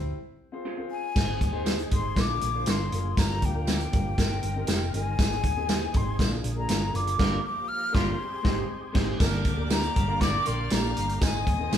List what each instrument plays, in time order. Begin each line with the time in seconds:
Already playing: fingered electric bass D2, upright piano C4 E4 G4 C5
0.52 upright piano C4 F4 G#4 C5
0.65 clean electric guitar C4 F4 G#4 C5
0.77 upright piano C4 F4 G#4 C5
0.91 flute G#5
1.15 fingered electric bass G#1, tonewheel organ G#3 C4 G#4, upright piano D#4 G4 G#4 C5, kick, snare, crash, tambourine
1.41 fingered electric bass D#2, kick, closed hi-hat
1.52 upright piano D#4 G4 G#4 C5
1.66 clean electric guitar G#3 D#4 G4 C5, snare, closed hi-hat, tambourine
1.79 closed hi-hat
1.91 fingered electric bass G#1, upright piano D#4 G4 G#4 C5, flute C6, kick, closed hi-hat
2.15 fingered electric bass A#1, tonewheel organ D3 A#3, upright piano D4 F4 G#4 A#4, kick, snare, closed hi-hat, tambourine
2.20 flute D6
2.41 fingered electric bass A#1, closed hi-hat
2.53 upright piano D4 F4 G#4 C5
2.66 fingered electric bass G1, clean electric guitar G#3 D4 F4 A#4, snare, closed hi-hat, tambourine
2.70 flute C6
2.92 fingered electric bass F#1, upright piano D4 F4 G#4 A#4, closed hi-hat
3.16 fingered electric bass G1, tonewheel organ F3 G4, upright piano D4 F4 G4 A#4, flute A#5, kick, snare, closed hi-hat, tambourine
3.29 snare
3.42 fingered electric bass D2, flute G5, kick, closed hi-hat
3.54 upright piano D4 F4 G4 A#4
3.67 clean electric guitar A#3 D4 F4 A#4, snare, closed hi-hat, tambourine
3.80 closed hi-hat
3.92 fingered electric bass G1, upright piano D4 F4 G4 A#4, kick, closed hi-hat
4.17 fingered electric bass G1, tonewheel organ D#3 C4 A#4, upright piano C4 D#4 G4 A#4, kick, snare, closed hi-hat, tambourine
4.43 fingered electric bass G1, closed hi-hat
4.55 upright piano C4 D#4 G4 A#4
4.67 fingered electric bass F1, clean electric guitar A#3 D#4 G4 C5, snare, closed hi-hat, tambourine
4.94 fingered electric bass G1, upright piano C4 D#4 G4 A#4, flute G#5, closed hi-hat
5.18 fingered electric bass G#1, tonewheel organ G#3 G#4, upright piano C4 D#4 G4 G#4, kick, snare, closed hi-hat, tambourine
5.31 snare
5.44 fingered electric bass D#2, kick, closed hi-hat
5.56 upright piano C4 D#4 G4 G#4
5.68 clean electric guitar G#3 D#4 G4 C5, snare, closed hi-hat, tambourine
5.93 fingered electric bass G#1, upright piano C4 D#4 G4 G#4, flute C6, kick, closed hi-hat
6.18 fingered electric bass A#1, tonewheel organ D3 A#3, upright piano A#3 D4 F4 G#4, kick, snare, closed hi-hat, tambourine
6.44 fingered electric bass A#1, closed hi-hat
6.56 upright piano A#3 D4 F4 G#4, flute A#5
6.69 fingered electric bass G1, clean electric guitar G#3 D4 F4 A#4, snare, closed hi-hat, tambourine
6.93 fingered electric bass F#1, upright piano A#3 D4 F4 G#4, flute D6, closed hi-hat
7.07 closed hi-hat
7.18 fingered electric bass G1, tonewheel organ F3 G4, clean electric guitar G3 D4 F4 A#4, horn section G3 F4 A#4, upright piano A#3 D4 F4 G4, kick, snare, crash
7.44 flute D6
7.68 flute F6
7.92 fingered electric bass G1, clean electric guitar G3 D4 F4 A#4, horn section G3 F4 A#4, upright piano A#3 D4 F4 G4, flute C6, kick, snare
8.20 tonewheel organ C4 G4 G#4
8.43 fingered electric bass G#1, upright piano G#3 C4 D#4 G4, clean electric guitar G#3 D#4 G4 C5, kick, snare
8.93 fingered electric bass G#1, upright piano G#3 C4 D#4, clean electric guitar G#3 D#4 G4 C5, kick, snare, crash
9.19 fingered electric bass G1, tonewheel organ D3 A#3 G4, horn section G3 D4 A#4, upright piano A#3 D4 G4 A#4 D5, string section D5 D6, kick, snare, closed hi-hat, tambourine
9.32 snare
9.45 fingered electric bass D2, kick, closed hi-hat
9.57 upright piano A#3 D4 G4 A#4 D5
9.70 horn section D3 A#3 G4, clean electric guitar A#3 D4 G4 A#4, flute A#5, snare, closed hi-hat, tambourine
9.83 closed hi-hat
9.96 fingered electric bass G1, horn section G3 D4 A#4, kick, closed hi-hat
10.07 upright piano A#3 D4 G4 A#4 F5
10.21 horn section A#3 G4 D5, flute D6, kick, snare, closed hi-hat, tambourine
10.45 fingered electric bass A#1, upright piano A#3 D4 G4 A#4 D5, string section F5 F6, flute C6, closed hi-hat
10.70 fingered electric bass A#1, clean electric guitar A#3 D4 G4 A#4, flute A#5, snare, closed hi-hat, tambourine
10.82 upright piano A#3 D4 G4 A#4 D5
10.97 fingered electric bass G1, closed hi-hat
11.09 closed hi-hat
11.21 fingered electric bass G#1, tonewheel organ D#3 C4 G#4, upright piano C4 D#4 G#4 C5 D#5, string section D#5 D#6, flute G#5, kick, snare, closed hi-hat, tambourine
11.47 fingered electric bass D#2, kick, closed hi-hat
11.58 upright piano C4 D#4 G#4 B4 D#5
11.66 upright piano C5
11.71 fingered electric bass G#1, clean electric guitar G#3 C4 D#4 G#4, snare, closed hi-hat, tambourine